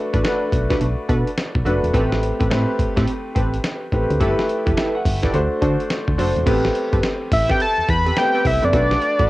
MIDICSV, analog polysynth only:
0, 0, Header, 1, 2, 480
1, 0, Start_track
1, 0, Tempo, 566038
1, 1645, Time_signature, 4, 2, 24, 8
1, 7886, End_track
2, 0, Start_track
2, 0, Title_t, "Analog polysynth"
2, 0, Program_c, 0, 90
2, 112, Note_on_c, 0, 62, 75
2, 114, Note_on_c, 0, 66, 67
2, 115, Note_on_c, 0, 69, 66
2, 118, Note_on_c, 0, 71, 81
2, 190, Note_off_c, 0, 62, 0
2, 192, Note_off_c, 0, 66, 0
2, 193, Note_off_c, 0, 69, 0
2, 195, Note_off_c, 0, 71, 0
2, 200, Note_on_c, 0, 62, 73
2, 202, Note_on_c, 0, 66, 70
2, 203, Note_on_c, 0, 69, 70
2, 206, Note_on_c, 0, 71, 87
2, 379, Note_off_c, 0, 62, 0
2, 380, Note_off_c, 0, 66, 0
2, 381, Note_off_c, 0, 69, 0
2, 382, Note_off_c, 0, 71, 0
2, 591, Note_on_c, 0, 62, 77
2, 593, Note_on_c, 0, 66, 77
2, 594, Note_on_c, 0, 69, 72
2, 596, Note_on_c, 0, 71, 88
2, 726, Note_off_c, 0, 62, 0
2, 727, Note_off_c, 0, 66, 0
2, 728, Note_off_c, 0, 69, 0
2, 729, Note_off_c, 0, 71, 0
2, 922, Note_on_c, 0, 62, 81
2, 924, Note_on_c, 0, 66, 72
2, 925, Note_on_c, 0, 69, 73
2, 928, Note_on_c, 0, 71, 90
2, 1100, Note_off_c, 0, 62, 0
2, 1101, Note_off_c, 0, 66, 0
2, 1102, Note_off_c, 0, 69, 0
2, 1103, Note_off_c, 0, 71, 0
2, 1400, Note_on_c, 0, 62, 81
2, 1402, Note_on_c, 0, 66, 73
2, 1402, Note_on_c, 0, 69, 70
2, 1405, Note_on_c, 0, 71, 83
2, 1579, Note_off_c, 0, 62, 0
2, 1580, Note_off_c, 0, 66, 0
2, 1580, Note_off_c, 0, 69, 0
2, 1582, Note_off_c, 0, 71, 0
2, 1640, Note_on_c, 0, 60, 96
2, 1641, Note_on_c, 0, 67, 86
2, 1644, Note_on_c, 0, 69, 86
2, 1645, Note_on_c, 0, 71, 106
2, 1819, Note_off_c, 0, 60, 0
2, 1820, Note_off_c, 0, 67, 0
2, 1821, Note_off_c, 0, 69, 0
2, 1822, Note_off_c, 0, 71, 0
2, 2030, Note_on_c, 0, 60, 68
2, 2030, Note_on_c, 0, 67, 66
2, 2032, Note_on_c, 0, 69, 66
2, 2035, Note_on_c, 0, 71, 85
2, 2108, Note_off_c, 0, 60, 0
2, 2110, Note_off_c, 0, 67, 0
2, 2112, Note_off_c, 0, 69, 0
2, 2114, Note_off_c, 0, 71, 0
2, 2119, Note_on_c, 0, 60, 73
2, 2120, Note_on_c, 0, 67, 68
2, 2123, Note_on_c, 0, 69, 69
2, 2124, Note_on_c, 0, 71, 84
2, 2299, Note_off_c, 0, 60, 0
2, 2300, Note_off_c, 0, 67, 0
2, 2301, Note_off_c, 0, 69, 0
2, 2301, Note_off_c, 0, 71, 0
2, 2511, Note_on_c, 0, 60, 80
2, 2513, Note_on_c, 0, 67, 72
2, 2515, Note_on_c, 0, 69, 76
2, 2516, Note_on_c, 0, 71, 96
2, 2646, Note_off_c, 0, 60, 0
2, 2647, Note_off_c, 0, 67, 0
2, 2648, Note_off_c, 0, 69, 0
2, 2648, Note_off_c, 0, 71, 0
2, 2840, Note_on_c, 0, 60, 79
2, 2841, Note_on_c, 0, 67, 72
2, 2844, Note_on_c, 0, 69, 74
2, 2845, Note_on_c, 0, 71, 85
2, 3019, Note_off_c, 0, 60, 0
2, 3020, Note_off_c, 0, 67, 0
2, 3021, Note_off_c, 0, 69, 0
2, 3022, Note_off_c, 0, 71, 0
2, 3562, Note_on_c, 0, 64, 93
2, 3563, Note_on_c, 0, 67, 89
2, 3565, Note_on_c, 0, 69, 87
2, 3566, Note_on_c, 0, 71, 113
2, 3740, Note_off_c, 0, 64, 0
2, 3741, Note_off_c, 0, 67, 0
2, 3742, Note_off_c, 0, 69, 0
2, 3743, Note_off_c, 0, 71, 0
2, 3951, Note_on_c, 0, 64, 70
2, 3954, Note_on_c, 0, 67, 71
2, 3955, Note_on_c, 0, 69, 62
2, 3957, Note_on_c, 0, 71, 77
2, 4032, Note_off_c, 0, 64, 0
2, 4035, Note_off_c, 0, 67, 0
2, 4036, Note_off_c, 0, 69, 0
2, 4037, Note_off_c, 0, 71, 0
2, 4043, Note_on_c, 0, 64, 79
2, 4045, Note_on_c, 0, 67, 68
2, 4046, Note_on_c, 0, 69, 67
2, 4047, Note_on_c, 0, 71, 81
2, 4221, Note_off_c, 0, 64, 0
2, 4222, Note_off_c, 0, 67, 0
2, 4222, Note_off_c, 0, 69, 0
2, 4223, Note_off_c, 0, 71, 0
2, 4431, Note_on_c, 0, 64, 78
2, 4432, Note_on_c, 0, 67, 77
2, 4435, Note_on_c, 0, 69, 76
2, 4436, Note_on_c, 0, 71, 87
2, 4566, Note_off_c, 0, 64, 0
2, 4567, Note_off_c, 0, 67, 0
2, 4568, Note_off_c, 0, 69, 0
2, 4569, Note_off_c, 0, 71, 0
2, 4762, Note_on_c, 0, 62, 81
2, 4763, Note_on_c, 0, 66, 73
2, 4765, Note_on_c, 0, 69, 73
2, 4766, Note_on_c, 0, 72, 89
2, 4940, Note_off_c, 0, 62, 0
2, 4941, Note_off_c, 0, 66, 0
2, 4942, Note_off_c, 0, 69, 0
2, 4942, Note_off_c, 0, 72, 0
2, 5241, Note_on_c, 0, 62, 77
2, 5241, Note_on_c, 0, 66, 70
2, 5244, Note_on_c, 0, 69, 70
2, 5244, Note_on_c, 0, 72, 82
2, 5420, Note_off_c, 0, 62, 0
2, 5420, Note_off_c, 0, 66, 0
2, 5421, Note_off_c, 0, 69, 0
2, 5422, Note_off_c, 0, 72, 0
2, 5477, Note_on_c, 0, 60, 97
2, 5479, Note_on_c, 0, 67, 87
2, 5481, Note_on_c, 0, 69, 91
2, 5483, Note_on_c, 0, 71, 104
2, 5658, Note_off_c, 0, 60, 0
2, 5659, Note_off_c, 0, 67, 0
2, 5660, Note_off_c, 0, 69, 0
2, 5661, Note_off_c, 0, 71, 0
2, 5871, Note_on_c, 0, 60, 76
2, 5873, Note_on_c, 0, 67, 72
2, 5876, Note_on_c, 0, 69, 62
2, 5876, Note_on_c, 0, 71, 84
2, 6006, Note_off_c, 0, 60, 0
2, 6007, Note_off_c, 0, 67, 0
2, 6008, Note_off_c, 0, 69, 0
2, 6009, Note_off_c, 0, 71, 0
2, 6352, Note_on_c, 0, 60, 76
2, 6353, Note_on_c, 0, 67, 70
2, 6355, Note_on_c, 0, 69, 75
2, 6355, Note_on_c, 0, 71, 91
2, 6486, Note_off_c, 0, 60, 0
2, 6487, Note_off_c, 0, 67, 0
2, 6488, Note_off_c, 0, 69, 0
2, 6488, Note_off_c, 0, 71, 0
2, 6832, Note_on_c, 0, 60, 68
2, 6834, Note_on_c, 0, 67, 67
2, 6835, Note_on_c, 0, 69, 67
2, 6837, Note_on_c, 0, 71, 88
2, 6967, Note_off_c, 0, 60, 0
2, 6968, Note_off_c, 0, 67, 0
2, 6968, Note_off_c, 0, 69, 0
2, 6969, Note_off_c, 0, 71, 0
2, 7076, Note_on_c, 0, 60, 79
2, 7077, Note_on_c, 0, 67, 72
2, 7079, Note_on_c, 0, 69, 72
2, 7081, Note_on_c, 0, 71, 87
2, 7208, Note_off_c, 0, 60, 0
2, 7209, Note_off_c, 0, 67, 0
2, 7210, Note_off_c, 0, 69, 0
2, 7211, Note_off_c, 0, 71, 0
2, 7311, Note_on_c, 0, 60, 73
2, 7314, Note_on_c, 0, 67, 67
2, 7314, Note_on_c, 0, 69, 61
2, 7317, Note_on_c, 0, 71, 77
2, 7392, Note_off_c, 0, 69, 0
2, 7394, Note_off_c, 0, 71, 0
2, 7399, Note_on_c, 0, 62, 95
2, 7401, Note_on_c, 0, 66, 89
2, 7402, Note_on_c, 0, 69, 93
2, 7404, Note_on_c, 0, 71, 109
2, 7446, Note_off_c, 0, 60, 0
2, 7448, Note_off_c, 0, 67, 0
2, 7579, Note_off_c, 0, 62, 0
2, 7580, Note_off_c, 0, 66, 0
2, 7580, Note_off_c, 0, 69, 0
2, 7581, Note_off_c, 0, 71, 0
2, 7789, Note_on_c, 0, 62, 74
2, 7791, Note_on_c, 0, 66, 69
2, 7794, Note_on_c, 0, 69, 71
2, 7795, Note_on_c, 0, 71, 75
2, 7886, Note_off_c, 0, 62, 0
2, 7886, Note_off_c, 0, 66, 0
2, 7886, Note_off_c, 0, 69, 0
2, 7886, Note_off_c, 0, 71, 0
2, 7886, End_track
0, 0, End_of_file